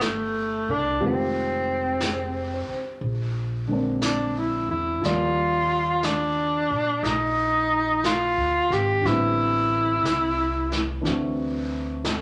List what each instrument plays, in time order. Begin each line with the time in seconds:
Already playing: upright bass G1, grand piano D3 G3 A3 B3 E4 F#4
0.01 tenor saxophone A3, brush sweep, snare, hi-hat pedal
0.69 upright bass C2, tenor saxophone D4
1.00 upright bass F1, grand piano D#3 G#3 C4 F4 G4, brush sweep
1.06 tenor saxophone C4
2.00 grand piano G#4, brush sweep, snare, hi-hat pedal
2.54 grand piano C5
2.69 muted upright bass stroke
3.01 upright bass A#1, brush sweep
3.67 grand piano D3 G#3 A#3 C4
3.73 grand piano D4
4.02 tenor saxophone D4, brush sweep, snare, hi-hat pedal
4.38 tenor saxophone E4
4.69 upright bass E2, tenor saxophone E4
5.01 upright bass D#2, grand piano F3 G3 A#3 D5, tenor saxophone F4, brush sweep, snare
5.06 grand piano F4
6.03 tenor saxophone D4, brush sweep, snare, hi-hat pedal
6.70 upright bass A#2
7.03 upright bass A#1, tenor saxophone D#4, brush sweep, snare
8.04 tenor saxophone F4, brush sweep, snare, hi-hat pedal
8.37 upright bass D2
8.70 upright bass G#1, tenor saxophone G4, snare
9.01 upright bass A1, grand piano D3 G3
9.05 grand piano B3 C4, tenor saxophone E4, brush sweep, snare
9.11 grand piano E4
10.02 upright bass C2, brush sweep, snare, hi-hat pedal
10.72 snare
11.01 upright bass D2, grand piano E3 A3 D4, brush sweep, snare
11.06 grand piano C4 F#4
12.04 grand piano A4, brush sweep, snare, hi-hat pedal